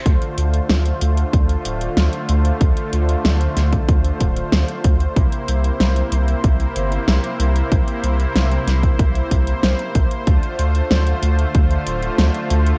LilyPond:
<<
  \new Staff \with { instrumentName = "Supersaw synth" } { \time 4/4 \key d \minor \tempo 4 = 94 << { c''1~ | c''1~ | c''1~ | c''1~ |
c''1 | } \\ { <d a f'>1~ | <d a f'>1 | <c bes e'>1~ | <c bes e'>1 |
<d a f'>1 | } >> }
  \new Staff \with { instrumentName = "Analog synth bass" } { \clef bass \time 4/4 \key d \minor d,8 d,8 d,8 d,8 d,8 d,,8 d,8 d,8 | d,8 d,8 d,8 d,8 d,8 d,,8 d,8 d,8 | c,8 c,8 c,8 c,8 c,8 g,,8 c,8 c,8 | c,8 c,8 c,8 c,8 c,8 c,8 c,8 c,8 |
d,8 d,8 d,8 d,8 d,8 d,,8 d,8 d,8 | }
  \new DrumStaff \with { instrumentName = "Drums" } \drummode { \time 4/4 <hh bd>16 hh16 hh16 hh16 <hh sn>16 hh16 hh16 hh16 <hh bd>16 hh16 hh16 hh16 <hh sn>16 hh16 hh16 hh16 | <hh bd>16 hh16 hh16 hh16 <hh sn>16 hh16 <hh sn>16 <hh bd>16 <hh bd>16 hh16 <hh bd>16 hh16 <hh sn>16 hh16 <hh bd>16 hh16 | <hh bd>16 hh16 hh16 hh16 <hh sn>16 hh16 hh16 hh16 <hh bd>16 hh16 hh16 hh16 <hh sn>16 hh16 hh16 hh16 | <hh bd>16 hh16 hh16 hh16 <hh sn>16 hh16 <hh sn>16 <hh bd>16 <hh bd>16 hh16 <hh bd>16 hh16 <hh sn>16 hh16 <hh bd>16 hh16 |
<hh bd>16 hh16 hh16 hh16 <hh sn>16 hh16 hh16 hh16 <hh bd>16 hh16 hh16 hh16 <hh sn>16 hh16 hh16 hh16 | }
>>